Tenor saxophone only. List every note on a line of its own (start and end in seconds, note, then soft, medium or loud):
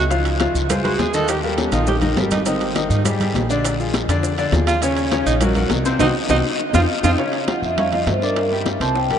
0.69 0.83 F4 medium
0.83 1.01 F#4 medium
0.99 1.15 G#4 loud
1.14 1.31 A4 loud
1.29 1.43 G4 loud
1.43 1.60 A#3 medium
1.58 1.72 C#4 medium
1.73 1.86 F4 medium
1.88 1.97 G4 medium
2.32 2.48 D#4 medium
2.46 2.89 C4 medium
2.90 3.04 D#4 medium
4.67 4.84 F4 loud
4.83 5.26 C#4 medium
5.26 5.35 D#4 loud
6.00 6.07 D#4 loud
6.31 6.37 D#4 loud
6.75 6.81 F4 loud
7.04 7.11 F4 loud